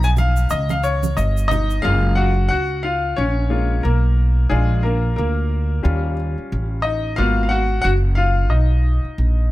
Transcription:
Already playing: upright bass B1, upright piano F3 B3 D#4
0.03 upright piano G#5, shaker
0.17 upright piano F5, high conga, low conga, shaker
0.36 shaker
0.50 upright bass C#2, upright piano D#5, high conga, shaker
0.69 upright piano F5, high conga, shaker
0.84 upright piano C#5, shaker
1.03 high conga, shaker
1.17 upright bass G1, upright piano D#5, shaker
1.37 shaker
1.48 upright piano D#4 D#5, low conga, shaker
1.70 shaker
1.82 upright bass F#1, upright piano G#3 A#3 F4 F5
2.15 upright piano F#4 F#5
2.49 upright bass C#2, upright piano F#4 F#5
2.83 upright piano F4 F5
3.17 upright bass A#1, upright piano C#4 C#5
3.50 upright piano G#3 A#3 F4
3.83 upright bass B1, upright piano A#3 A#4
4.50 upright bass A#1, upright piano G#3 D4 F4 G#4
4.83 upright piano A#3 A#4
5.16 upright bass D2, upright piano A#3 A#4
5.83 upright bass D#2, upright piano G3 C#4 F4
6.38 muted upright bass stroke
6.52 upright bass A1
6.82 upright piano D#4 D#5
7.16 upright bass G#1, upright piano A#3 B3 F4 F#4 F5
7.43 upright piano F5
7.49 upright piano F#4 F#5
7.82 upright bass F#1, upright piano F#4 F#5
8.15 upright piano F4 F5
8.50 upright bass B1, upright piano D#4 D#5
9.05 muted upright bass stroke
9.18 upright bass A#1

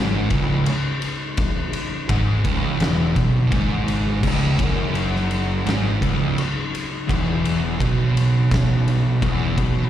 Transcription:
Already playing: fingered electric bass G#1, distorted electric guitar G#2, string machine C#3 G#3 D#4
0.30 fingered electric bass C#1, distorted electric guitar C#2, kick, ride
0.66 ride
1.02 ride
1.37 string machine F#3, kick, ride
1.73 ride
2.09 fingered electric bass G#1, distorted electric guitar G#2, kick, ride
2.45 fingered electric bass C#1, distorted electric guitar C#2, kick, ride
2.80 fingered electric bass E1, distorted electric guitar E2, snare, ride
3.15 fingered electric bass B1, distorted electric guitar B2, kick, ride
3.51 fingered electric bass G#1, distorted electric guitar G#2, kick, ride
3.88 ride
4.22 fingered electric bass C#1, distorted electric guitar C#2, kick, crash
4.59 fingered electric bass F#1, distorted electric guitar F#2, kick, ride
4.95 ride
5.16 snare
5.31 ride
5.65 fingered electric bass G#1, distorted electric guitar G#2, snare, ride
6.01 fingered electric bass C#1, distorted electric guitar C#2, kick, ride
6.38 ride
6.75 ride
7.07 fingered electric bass E1, distorted electric guitar E2, kick, ride
7.45 ride
7.79 fingered electric bass B1, distorted electric guitar B2, kick, ride
8.17 ride
8.51 kick, snare, ride
8.88 ride
9.21 fingered electric bass E1, distorted electric guitar E2, kick, ride
9.57 fingered electric bass B1, distorted electric guitar B2, kick, ride

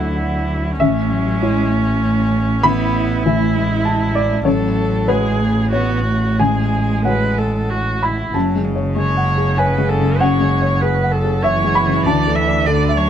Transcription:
Already playing: double bass D2, upright piano D2 A3 F#4 D5 E5 F#5, cello F#3, viola E4
0.79 double bass A1, upright piano A1 E5, cello A3, viola C#4
1.10 cello F#3
1.40 cello G#3, upright piano C#4 E4 C#5
1.71 cello A3
2.63 upright piano A1 B5, cello B3, viola E4
3.24 upright piano E3 E4 E5, cello A3, viola E4
3.56 cello G#3
3.85 upright piano A5
4.15 upright piano D5
4.45 upright piano A1 C#5, double bass A1, cello F#3, viola A4
5.07 cello G#3, upright piano F#4 G#4 B4 C#5, viola G#4
5.40 cello A3
5.72 cello B3, viola F#4, upright piano C#5
6.06 cello A3
6.39 upright piano A1 G#5, cello G#3, viola G#4
7.05 upright piano G#3 F#4 C#5 F#5, viola B4
7.38 viola A4
7.70 viola F#4
8.03 viola E4, upright piano B5
8.34 double bass F#1, upright piano F#2 A5, cello F#3
8.56 upright piano G#3
8.65 cello C#3
8.76 upright piano C#5
8.96 upright piano G#3, viola C#5
9.17 upright piano F#5
9.37 upright piano G#4
9.58 viola B4, upright piano C#5 G#5
9.78 upright piano G#3
9.89 viola A4
9.99 upright piano C#3
10.20 upright piano F#2 F#5, viola C#5
10.40 upright piano G#3
10.62 upright piano C#5
10.81 upright piano G#4, viola B4
11.04 upright piano F#5
11.12 viola A4
11.24 upright piano G#4
11.43 cello E3, viola C#5, upright piano C#5 E5
11.64 upright piano G#3
11.75 upright piano B5
11.86 upright piano C#3
12.05 double bass D2, upright piano D2 A5, viola D5
12.27 upright piano A3
12.35 viola E5
12.48 upright piano D5
12.66 cello D3, upright piano A4, viola D5
12.89 upright piano E5
12.97 cello F#3, viola C#5

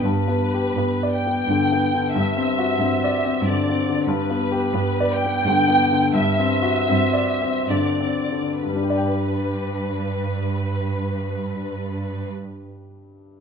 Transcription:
0.04 cello section G2, grand piano G2, violin section B4
0.28 grand piano B3
0.54 grand piano G4
0.76 cello section G2, grand piano B3
1.03 grand piano D5
1.13 violin section G5
1.26 grand piano B3
1.47 cello section G2, grand piano D3
1.72 grand piano B3
1.94 grand piano D3
2.14 cello section G2, grand piano G2, violin section E5
2.37 grand piano C4
2.58 grand piano F#4
2.79 cello section G2, grand piano C4
3.04 grand piano D5
3.25 grand piano C4
3.44 cello section G2, grand piano D3, violin section D5
3.69 grand piano C4
3.89 grand piano D3
4.06 cello section G2, grand piano G2, violin section B4
4.30 grand piano B3
4.52 grand piano G4
4.74 cello section G2, grand piano B3
5.00 grand piano D5
5.13 violin section G5
5.25 grand piano B3
5.47 cello section G2, grand piano D3
5.68 grand piano B3
5.92 grand piano D3
6.14 grand piano G2, cello section G2, violin section E5
6.39 grand piano C4
6.62 grand piano F#4
6.88 cello section G2, grand piano C4
7.13 grand piano D5
7.42 grand piano C4
7.70 cello section G2, grand piano D3, violin section D5
8.00 grand piano C4
8.32 grand piano D3
8.61 cello section G2, grand piano G2, violin section B4
8.69 grand piano G3
8.76 grand piano D4
8.83 grand piano G4
8.90 grand piano D5
8.97 grand piano G5

